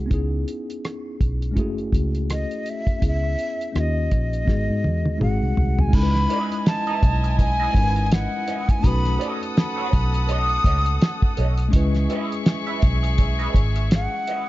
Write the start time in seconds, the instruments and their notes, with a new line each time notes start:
Already playing: tine electric piano G#3 C4 D#4 F#4 G#4
0.06 tine electric piano B3 C#4 D#4
0.11 fingered electric bass C#2, tine electric piano E4 G#4, kick, closed hi-hat
0.48 closed hi-hat
0.70 closed hi-hat
0.85 cross-stick, closed hi-hat
1.21 fingered electric bass B1, kick, closed hi-hat
1.42 closed hi-hat
1.51 tine electric piano G#3 C#4
1.56 fingered electric bass F#1, tine electric piano A3 E4 F#4 G#4, kick, closed hi-hat
1.78 closed hi-hat
1.93 fingered electric bass C#2, kick, closed hi-hat
2.15 closed hi-hat
2.30 flute D#5, cross-stick, closed hi-hat
2.51 closed hi-hat
2.66 flute E5, closed hi-hat
2.87 kick, closed hi-hat
2.99 fingered electric bass C#2, tine electric piano B3 C#4 E4 G#4, kick, closed hi-hat
3.07 flute E5
3.24 cross-stick
3.39 closed hi-hat
3.61 closed hi-hat
3.72 fingered electric bass D#2, tine electric piano A#3 C#4 D#4 F4 G4, cross-stick, closed hi-hat
3.80 flute D#5
4.11 fingered electric bass A#1, kick, closed hi-hat
4.33 closed hi-hat
4.45 fingered electric bass G#1, tine electric piano G#3 B3 D#4 F#4, kick, snare
4.49 tine electric piano G#4
4.70 fingered electric bass G#2
4.84 fingered electric bass E2, high tom
5.05 fingered electric bass D#2, high tom
5.18 fingered electric bass G#1, tine electric piano G#3 C4 D#4 F#4 G#4, mid tom
5.22 flute F#5
5.42 fingered electric bass C2
5.57 fingered electric bass C2, floor tom
5.79 flute G#5, floor tom
5.89 tine electric piano G#3 C#4 D#4
5.93 fingered electric bass C#2, string section E4 D#5 G#5, tine electric piano E4 A4, flute B5, kick, crash
6.03 tine electric piano B4
6.15 snare
6.29 clean electric guitar E4 B4 D#5, closed hi-hat
6.52 closed hi-hat
6.66 flute A5, muted clean electric guitar stroke, snare, closed hi-hat
6.87 clean electric guitar E4 B4 E5, closed hi-hat
7.03 fingered electric bass B1, muted clean electric guitar stroke, kick, closed hi-hat
7.24 muted clean electric guitar stroke, closed hi-hat
7.39 flute G#5, muted clean electric guitar stroke, kick, closed hi-hat
7.60 clean electric guitar E4 B4 D#5
7.72 fingered electric bass G#1, tine electric piano G#3 C#4 D#4 E4, muted clean electric guitar stroke, kick, closed hi-hat
7.76 tine electric piano A#4
7.83 tine electric piano B4
7.96 muted clean electric guitar stroke, closed hi-hat
8.06 flute G#5
8.12 flute F#5, muted clean electric guitar stroke, snare, closed hi-hat
8.47 clean electric guitar E4 B4 D#5, closed hi-hat
8.68 flute G#5, muted clean electric guitar stroke, kick, closed hi-hat
8.79 tine electric piano A3 C#4 D#4
8.84 fingered electric bass B1, tine electric piano F#4 B4, string section A4 F#5 D#6, flute B5, kick, closed hi-hat
9.05 snare, closed hi-hat
9.18 clean electric guitar A4 C#5 D#5, closed hi-hat
9.43 closed hi-hat
9.56 flute B5, muted clean electric guitar stroke, snare, closed hi-hat
9.76 clean electric guitar A4 C#5 F#5
9.91 fingered electric bass B1, muted clean electric guitar stroke, kick, closed hi-hat
10.13 muted clean electric guitar stroke, closed hi-hat
10.27 clean electric guitar A4 C#5 D#5, closed hi-hat
10.32 flute D#6
10.49 muted clean electric guitar stroke, closed hi-hat
10.64 fingered electric bass C#2, clean electric guitar A4 C#5 D#5, kick, closed hi-hat
10.86 muted clean electric guitar stroke, closed hi-hat
11.01 muted clean electric guitar stroke, snare, closed hi-hat
11.22 kick
11.37 fingered electric bass B1, clean electric guitar A4 C#5 D#5, closed hi-hat
11.57 muted clean electric guitar stroke, closed hi-hat
11.69 tine electric piano G#3 C#4
11.73 fingered electric bass C#2, tine electric piano E4 B4 D#5, string section G#4 E5 C#6, kick, closed hi-hat
11.95 snare, closed hi-hat
12.09 clean electric guitar E4 B4 D#5, closed hi-hat
12.32 closed hi-hat
12.46 muted clean electric guitar stroke, snare, closed hi-hat
12.67 clean electric guitar E4 B4 E5, closed hi-hat
12.82 fingered electric bass B1, muted clean electric guitar stroke, kick, closed hi-hat
13.03 muted clean electric guitar stroke, closed hi-hat
13.18 muted clean electric guitar stroke, kick, closed hi-hat
13.39 clean electric guitar E4 B4 D#5, closed hi-hat
13.54 fingered electric bass G#1, muted clean electric guitar stroke, kick, closed hi-hat
13.76 muted clean electric guitar stroke, closed hi-hat
13.91 flute F#5, muted clean electric guitar stroke, snare, closed hi-hat
14.27 clean electric guitar E4 B4 D#5, closed hi-hat